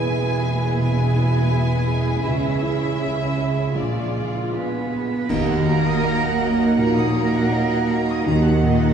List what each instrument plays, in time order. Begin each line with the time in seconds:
Already playing: double bass section E1, felt piano E2 E4, cello section E2, harp E2 E4 B4, viola section G#3 B3, violin section E4 G#4 G#5
0.05 felt piano B4, harp E5
0.30 harp G#5
0.42 felt piano G#4
0.55 harp B4
0.79 felt piano B2, harp B2, violin section G#5
1.04 harp E4
1.15 felt piano E4
1.28 harp B4
1.51 felt piano B4, harp E5
1.77 harp G#5
1.88 felt piano G#4
2.01 harp B4
2.24 felt piano C#2, double bass section C#2, cello section C#3, harp C#3, viola section C#4, violin section E5
2.51 harp E4
2.62 felt piano E4
2.75 harp C#5
3.00 felt piano C#5
3.25 harp G#5
3.38 felt piano G#4
3.51 harp C#5
3.75 felt piano A#1, double bass section A#1, cello section A#2, harp A#2, viola section G#3 F4, violin section F4 D5
4.02 harp F4
4.14 felt piano F4
4.27 harp F5
4.52 cello section B3, harp G#4, cello B4, felt piano F5
4.79 harp G#5
4.92 felt piano G#4
5.05 harp F5
5.28 felt piano D#2, double bass section D#2, harp D#3, french horn section F#3 D#4, viola section A#3, cello section A#3, cello A#4, violin section D#5 F#5, concert bass drum, crash
5.48 violin section F#5
5.54 harp F#4
5.67 felt piano F#4, violin section A#5
5.79 harp D#5
5.85 violin section D#6
6.04 felt piano D#5, harp F#5, violin section A#5
6.24 violin section F#5
6.28 harp D#5
6.41 felt piano F#4, violin section D#5
6.53 harp F#4
6.61 violin section F#5
6.77 double bass section A#1, felt piano A#2, harp A#3, cello section A#3, cello A#4, violin section A#5
6.98 violin section D#6
7.02 harp F#4
7.15 felt piano F#4, violin section A#5
7.26 harp D#5
7.35 violin section F#5
7.51 felt piano D#5, violin section D#5, harp F#5
7.71 violin section F#5
7.76 harp D#5
7.90 felt piano F#4, violin section A#5
8.01 harp F#4
8.08 violin section D#6
8.25 double bass section D#2, felt piano D#2, harp D#3, cello section D#3, french horn section F#3 D#4, viola section A#3, cello D#4, violin section F#5 A#5
8.45 violin section F#5
8.50 harp A#3
8.63 felt piano A#2, violin section D#5
8.74 harp D#5
8.82 violin section F#5